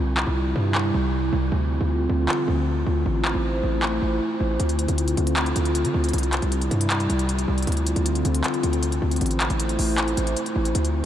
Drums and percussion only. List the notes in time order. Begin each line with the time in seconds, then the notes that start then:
0.17 clap
0.75 clap
2.29 clap
3.25 clap
3.83 clap
4.60 closed hi-hat
4.69 closed hi-hat
4.79 closed hi-hat
4.88 closed hi-hat
4.98 closed hi-hat
5.08 closed hi-hat
5.17 closed hi-hat
5.27 closed hi-hat
5.36 clap, closed hi-hat
5.46 closed hi-hat
5.56 closed hi-hat
5.65 closed hi-hat
5.75 closed hi-hat
5.85 closed hi-hat
6.04 closed hi-hat
6.09 closed hi-hat
6.13 closed hi-hat
6.18 closed hi-hat
6.23 closed hi-hat
6.33 clap, closed hi-hat
6.42 closed hi-hat
6.52 closed hi-hat
6.62 closed hi-hat
6.71 closed hi-hat
6.81 closed hi-hat
6.90 clap, closed hi-hat
7.00 closed hi-hat
7.10 closed hi-hat
7.19 closed hi-hat
7.29 closed hi-hat
7.39 closed hi-hat
7.58 closed hi-hat
7.62 closed hi-hat
7.67 closed hi-hat
7.72 closed hi-hat
7.77 closed hi-hat
7.87 closed hi-hat
7.96 closed hi-hat
8.06 closed hi-hat
8.15 closed hi-hat
8.25 closed hi-hat
8.35 closed hi-hat
8.44 clap, closed hi-hat
8.54 closed hi-hat
8.63 closed hi-hat
8.73 closed hi-hat
8.83 closed hi-hat
8.92 closed hi-hat
9.11 closed hi-hat
9.16 closed hi-hat
9.21 closed hi-hat
9.26 closed hi-hat
9.31 closed hi-hat
9.40 clap, closed hi-hat
9.50 closed hi-hat
9.60 closed hi-hat
9.69 closed hi-hat
9.79 open hi-hat
9.98 clap, closed hi-hat
10.08 closed hi-hat
10.17 closed hi-hat
10.27 closed hi-hat
10.37 closed hi-hat
10.46 closed hi-hat
10.65 closed hi-hat
10.75 closed hi-hat
10.85 closed hi-hat